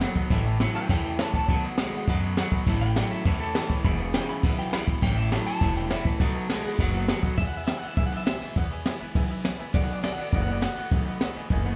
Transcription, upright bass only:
0.30 0.62 A1 medium
0.75 muted upright bass stroke medium
0.89 1.21 E2 medium
1.34 muted upright bass stroke medium
1.49 1.80 B1 loud
1.94 muted upright bass stroke medium
2.08 2.39 F#2 medium
2.67 2.98 A1 loud
3.11 muted upright bass stroke medium
3.26 3.57 E2 medium
3.85 4.16 E1 loud
4.29 muted upright bass stroke medium
4.44 4.75 B1 medium
4.88 muted upright bass stroke medium
5.02 5.34 A1 loud
5.47 muted upright bass stroke medium
5.61 5.92 E1 medium
6.20 6.51 B1 loud
6.65 muted upright bass stroke medium
6.79 7.10 F#1 medium
7.38 7.69 E2 medium
7.83 muted upright bass stroke medium
7.97 8.28 B1 medium
8.42 muted upright bass stroke medium
8.56 8.87 E2 loud
9.01 muted upright bass stroke medium
9.15 9.46 B1 medium
9.60 muted upright bass stroke medium
9.74 10.05 B1 loud
10.19 muted upright bass stroke medium
10.33 10.64 F#1 medium
10.78 muted upright bass stroke medium
10.92 11.23 B1 loud
11.36 muted upright bass stroke medium
11.50 11.76 F#1 medium

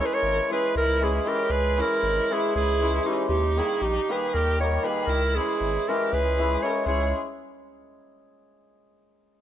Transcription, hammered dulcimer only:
0.00 0.48 E3 medium
0.00 0.49 G#3 medium
0.00 0.12 C#4 medium
0.00 0.12 E4 medium
0.00 0.12 G#4 medium
0.49 0.99 E3 medium
0.49 1.00 G#3 medium
0.49 0.65 C#4 medium
0.49 0.65 E4 medium
0.49 0.65 G#4 medium
1.00 1.23 E3 medium
1.00 1.24 G#3 medium
1.00 1.16 C#4 medium
1.00 1.16 E4 medium
1.00 1.16 G#4 medium
1.25 1.76 E3 medium
1.25 1.76 G#3 medium
1.25 1.39 C#4 medium
1.25 1.39 E4 medium
1.25 1.39 G#4 medium
1.77 2.29 E3 medium
1.77 2.29 G#3 medium
1.77 1.92 C#4 medium
1.77 1.92 E4 medium
1.77 1.92 G#4 medium
2.30 2.80 E3 medium
2.30 2.81 G#3 medium
2.30 2.45 C#4 medium
2.30 2.45 E4 medium
2.30 2.46 G#4 medium
2.81 3.03 E3 medium
2.81 3.03 G#3 medium
2.81 2.96 C#4 medium
2.81 2.96 E4 medium
2.81 2.96 G#4 medium
3.04 3.34 E3 medium
3.04 3.34 G#3 medium
3.04 3.18 C#4 medium
3.04 3.19 E4 medium
3.04 3.19 G#4 medium
3.56 4.07 D#3 medium
3.56 4.07 G3 medium
3.56 3.71 A#3 medium
3.56 3.72 D#4 medium
3.56 3.72 G4 medium
4.08 4.58 D#3 medium
4.08 4.59 G3 medium
4.08 4.23 A#3 medium
4.08 4.24 D#4 medium
4.08 4.24 G4 medium
4.59 4.82 D#3 medium
4.59 4.82 G3 medium
4.59 4.74 A#3 medium
4.59 4.74 D#4 medium
4.59 4.74 G4 medium
4.83 5.13 D#3 medium
4.83 5.13 G3 medium
4.83 4.97 A#3 medium
4.83 4.98 D#4 medium
4.83 4.98 G4 medium
5.35 5.87 E3 medium
5.35 5.87 G#3 medium
5.35 5.50 C#4 medium
5.35 5.50 E4 medium
5.35 5.50 G#4 medium
5.88 6.37 E3 medium
5.88 6.38 G#3 medium
5.88 6.03 C#4 medium
5.88 6.03 E4 medium
5.88 6.03 G#4 medium
6.38 6.62 E3 medium
6.38 6.61 G#3 medium
6.38 6.53 C#4 medium
6.38 6.53 E4 medium
6.38 6.54 G#4 medium
6.62 6.91 E3 medium
6.62 6.85 G#3 medium
6.62 6.77 C#4 medium
6.62 6.77 E4 medium
6.62 6.77 G#4 medium
6.86 7.13 G#3 medium
6.86 7.13 C#4 medium
6.86 7.13 E4 medium
6.86 7.13 G#4 medium

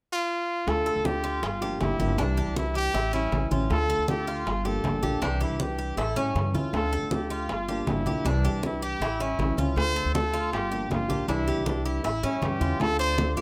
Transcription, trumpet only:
0.12 0.70 F4 loud
0.69 1.07 A4 loud
1.06 1.45 G4 medium
1.44 1.81 F4 medium
1.81 2.21 E4 medium
2.19 2.57 D4 medium
2.57 2.75 E4 medium
2.76 3.11 G4 loud
3.14 3.49 E4 medium
3.71 4.06 A4 loud
4.09 4.49 G4 medium
4.48 4.68 F4 medium
4.66 5.23 A4 medium
5.23 5.40 G4 medium
5.42 5.62 E4 medium
5.61 6.00 G4 medium
5.99 6.17 A4 medium
6.76 7.15 A4 loud
7.14 7.51 G4 medium
7.51 7.91 F4 medium
7.90 8.29 E4 medium
8.27 8.64 D4 medium
8.65 8.82 E4 medium
8.84 9.23 G4 loud
9.22 9.59 E4 medium
9.77 10.12 C5 loud
10.14 10.50 A4 loud
10.53 10.88 G4 medium
10.92 11.26 F4 medium
11.29 11.68 E4 medium
11.66 11.87 D4 medium
11.85 12.42 E4 medium
12.43 12.82 G4 loud
12.81 12.99 A4 loud
12.99 13.34 C5 loud

